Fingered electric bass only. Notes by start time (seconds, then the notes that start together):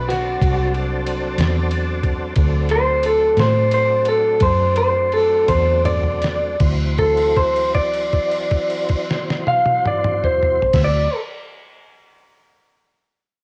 Already playing: B1
0.41 C2
1.38 E2
2.37 D2
3.37 A2
4.41 F#2
5.48 E2
6.60 D2
10.74 D2